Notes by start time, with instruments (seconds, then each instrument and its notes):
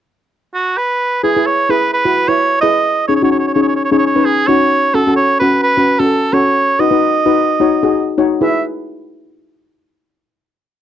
0.54 oboe F#4
0.77 oboe B4
1.23 steel pan E4 G#4 B4, oboe G#4
1.37 steel pan E4 G#4 B4
1.46 oboe C#5
1.70 steel pan E4 G#4 B4, oboe B4
1.93 oboe B4
2.05 steel pan E4 F#4 B4
2.28 steel pan E4 B4, oboe C#5
2.61 steel pan E4 G#4 B4, oboe D#5
3.08 steel pan C#4 D#4 G#4, oboe C#5
3.16 oboe C#5
3.22 steel pan C#4 D#4 F#4, oboe C#5
3.32 oboe C#5
3.39 oboe C#5
3.47 oboe C#5
3.54 steel pan C#4 D#4 G#4, oboe C#5
3.62 oboe C#5
3.68 oboe C#5
3.76 oboe C#5
3.85 oboe C#5
3.92 steel pan C#4 D#4 G#4, oboe C#5
3.98 oboe C#5
4.06 oboe C#5
4.16 steel pan C#4 D#4 B4
4.25 oboe G#4
4.47 steel pan C#4 D#4 F#4, oboe C#5
4.94 steel pan C#4 F#4 A4, oboe A4
5.07 steel pan C#4 F#4 A4
5.16 oboe C#5
5.39 steel pan C#4 F#4 B4, oboe B4
5.63 oboe B4
5.77 steel pan C#4 F#4 B4
5.99 steel pan C#4 F#4 A4, oboe A4
6.33 steel pan C#4 F#4 A4, oboe C#5
6.79 steel pan D#4 F#4 B4, oboe D#5
6.91 steel pan D#4 F#4 B4
7.26 steel pan D#4 F#4 B4
7.60 steel pan D#4 F#4 C#5
7.83 steel pan D#4 F#4 G#4
8.18 steel pan D#4 F#4 C#5
8.41 steel pan E4 G#4 B4, oboe E5